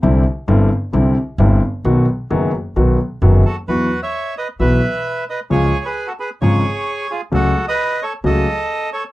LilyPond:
<<
  \new Staff \with { instrumentName = "Bandoneon" } { \time 4/4 \key b \phrygian \tempo 4 = 132 r1 | r2. r8 <fis' a'>8 | \key e \major <fis' b'>8. <cis'' e''>8. <b' dis''>8 <b' e''>4. <b' dis''>8 | <gis' cis''>8. <gis' b'>8 <fis' a'>16 <gis' b'>8 <gis' cis''>4. <eis' gis'>8 |
<fis' a'>8. <b' dis''>8. <a' cis''>8 <a' dis''>4. <a' cis''>8 | }
  \new Staff \with { instrumentName = "Grand piano" } { \clef bass \time 4/4 \key b \phrygian <c, c d g c' e'>8 r8 <g,, g, d g c' e'>8 r8 <c, c d g c' e'>8 r8 <g,, g, d g c' e'>8 r8 | <b,, b, dis fis b fis'>8 r8 <fis,, fis, dis fis b fis'>8 r8 <b,, b, dis fis b fis'>8 r8 <fis,, fis, dis fis b fis'>8 r8 | \key e \major <e, e fis b fis'>8 r4. <b,, b, e fis b fis'>8 r4. | <cis, cis eis gis eis'>8 r4. <gis,, gis, cis eis gis eis'>8 r4. |
<cis, cis fis a fis'>8 r4. <cis, cis fis a fis'>8 r4. | }
  \new Staff \with { instrumentName = "Upright bass" } { \clef bass \time 4/4 \key b \phrygian c,8 r8 g,,8 r8 c,8 r8 g,,8 r8 | b,,8 r8 fis,,8 r8 b,,8 r8 fis,,8 r8 | \key e \major e,8 r4. b,,8 r4. | cis,8 r4. gis,,8 r4. |
cis,8 r4. cis,8 r4. | }
>>